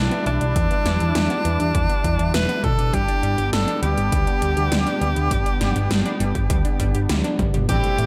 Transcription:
Already playing: synth arpeggio sound E3, analog synth pad G3 D4 E4, tenor saxophone D4
0.11 synth arpeggio sound B3, closed hi-hat
0.26 picked electric bass B1, synth arpeggio sound E3, tenor saxophone D4, closed hi-hat
0.41 picked electric bass B1, synth arpeggio sound D4, closed hi-hat
0.56 picked electric bass E2, synth arpeggio sound E3, kick, closed hi-hat
0.71 synth arpeggio sound B3, closed hi-hat
0.86 picked electric bass E2, synth arpeggio sound E3, snare, closed hi-hat
1.00 picked electric bass E2, synth arpeggio sound D4, closed hi-hat
1.15 picked electric bass E2, synth arpeggio sound E3, snare, closed hi-hat
1.30 synth arpeggio sound B3, closed hi-hat
1.45 picked electric bass E2, synth arpeggio sound E3, closed hi-hat
1.60 picked electric bass E2, synth arpeggio sound D4, closed hi-hat
1.75 picked electric bass E2, synth arpeggio sound E3, kick, closed hi-hat
1.89 synth arpeggio sound B3, closed hi-hat
2.04 picked electric bass E2, synth arpeggio sound E3, kick, closed hi-hat
2.19 picked electric bass E2, synth arpeggio sound D4, closed hi-hat
2.34 picked electric bass E1, synth arpeggio sound E3, tenor saxophone B4, snare, closed hi-hat
2.49 synth arpeggio sound B3, closed hi-hat
2.64 picked electric bass B2, synth arpeggio sound E3, tenor saxophone A4, kick, closed hi-hat
2.79 picked electric bass B2, synth arpeggio sound D4, closed hi-hat
2.93 picked electric bass G1, synth arpeggio sound G3, analog synth pad G3 B3, tenor saxophone G4, kick, closed hi-hat
3.08 synth arpeggio sound D4, closed hi-hat
3.23 picked electric bass G2, synth arpeggio sound G3, closed hi-hat
3.38 picked electric bass G1, synth arpeggio sound G4, closed hi-hat
3.53 picked electric bass G1, synth arpeggio sound G3, tenor saxophone A4, snare, closed hi-hat
3.68 synth arpeggio sound D4, closed hi-hat
3.83 picked electric bass D2, synth arpeggio sound G3, tenor saxophone G4, closed hi-hat
3.97 picked electric bass G1, synth arpeggio sound G4, closed hi-hat
4.12 picked electric bass D2, synth arpeggio sound G3, kick, closed hi-hat
4.27 synth arpeggio sound D4, closed hi-hat
4.42 picked electric bass D2, synth arpeggio sound G3, closed hi-hat
4.57 picked electric bass D2, synth arpeggio sound G4, closed hi-hat
4.72 picked electric bass D2, synth arpeggio sound G3, snare, closed hi-hat
4.87 synth arpeggio sound D4, closed hi-hat
5.01 picked electric bass D2, synth arpeggio sound G3, closed hi-hat
5.16 picked electric bass D2, synth arpeggio sound G4, closed hi-hat
5.31 picked electric bass G1, synth arpeggio sound G3, kick, closed hi-hat
5.46 synth arpeggio sound D4, closed hi-hat
5.61 picked electric bass G1, synth arpeggio sound G3, snare, closed hi-hat
5.76 picked electric bass G1, synth arpeggio sound G4, closed hi-hat
5.91 synth arpeggio sound G3, snare, closed hi-hat
6.05 synth arpeggio sound D4, closed hi-hat
6.20 picked electric bass G1, synth arpeggio sound G3, closed hi-hat
6.35 picked electric bass G1, synth arpeggio sound G4, kick, closed hi-hat
6.50 picked electric bass D2, synth arpeggio sound G3, kick, closed hi-hat
6.65 synth arpeggio sound D4, closed hi-hat
6.80 picked electric bass G1, synth arpeggio sound G3, kick, closed hi-hat
6.95 picked electric bass G1, synth arpeggio sound G4, closed hi-hat
7.09 picked electric bass D2, synth arpeggio sound G3, snare, closed hi-hat
7.24 synth arpeggio sound D4, closed hi-hat, high tom
7.39 picked electric bass G1, synth arpeggio sound G3, kick, closed hi-hat, mid tom
7.54 picked electric bass G1, synth arpeggio sound G4, closed hi-hat, mid tom
7.69 picked electric bass A1, synth arpeggio sound E3, analog polysynth G3 A3 C4 E4 G4, tenor saxophone G4, analog synth pad A4 E5 G5 C6, kick, closed hi-hat, mid tom
7.84 synth arpeggio sound A3, closed hi-hat
7.98 picked electric bass A2, synth arpeggio sound E3, closed hi-hat

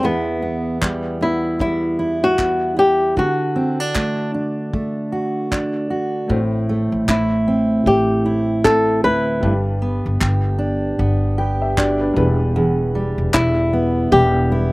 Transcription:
Already playing: steel-string acoustic guitar B3
0.03 steel-string acoustic guitar E2 E4, nylon-string guitar B3
0.42 steel-string acoustic guitar B3
0.82 steel-string acoustic guitar G3, kick, clap
1.21 steel-string acoustic guitar B3, nylon-string guitar E4
1.59 steel-string acoustic guitar G3, nylon-string guitar E4, kick
1.99 steel-string acoustic guitar E4
2.24 nylon-string guitar F#4
2.38 steel-string acoustic guitar B3, kick, clap
2.77 steel-string acoustic guitar E4, nylon-string guitar G4
3.17 steel-string acoustic guitar D3 F#4, nylon-string guitar F#4, kick
3.56 steel-string acoustic guitar C4
3.80 steel-string acoustic guitar D4
3.95 steel-string acoustic guitar A3, kick, clap
4.34 steel-string acoustic guitar D4
4.73 steel-string acoustic guitar A3, kick
5.12 steel-string acoustic guitar F#4
5.51 steel-string acoustic guitar D4, kick, clap
5.90 steel-string acoustic guitar F#4
6.28 upright bass A1, steel-string acoustic guitar A2, upright piano A3 C4 E4, kick
6.69 steel-string acoustic guitar A3
6.92 upright bass A1
7.08 upright bass A1, steel-string acoustic guitar E4, nylon-string guitar E4, kick, clap
7.48 steel-string acoustic guitar C4
7.86 upright bass A1, steel-string acoustic guitar A3, nylon-string guitar G4, kick
8.26 steel-string acoustic guitar E4
8.64 steel-string acoustic guitar C4, nylon-string guitar A4, kick, clap
9.04 upright bass D2, steel-string acoustic guitar E4, nylon-string guitar B4
9.41 upright bass G1, steel-string acoustic guitar G2, upright piano G3 D4 B4, kick
9.82 steel-string acoustic guitar B3
10.06 upright bass G1
10.21 upright bass G1, steel-string acoustic guitar G4, kick, clap
10.59 steel-string acoustic guitar D4
10.99 upright bass G1, steel-string acoustic guitar B3, kick
11.38 steel-string acoustic guitar G4, upright piano B4 G5
11.62 upright piano G4 E5
11.77 steel-string acoustic guitar D4, upright piano F#4 D5, kick, clap
12.00 upright piano D4 B4
12.14 upright bass E1, steel-string acoustic guitar E2, upright piano G3 E4 B4, kick
12.56 steel-string acoustic guitar E2
12.95 steel-string acoustic guitar G3
13.18 upright bass E1
13.34 upright bass E1, nylon-string guitar E4, steel-string acoustic guitar E4, kick, clap
13.73 steel-string acoustic guitar B3
14.12 upright bass E1, steel-string acoustic guitar G3, nylon-string guitar G4, kick
14.50 upright piano G3 E4 B4, steel-string acoustic guitar E4

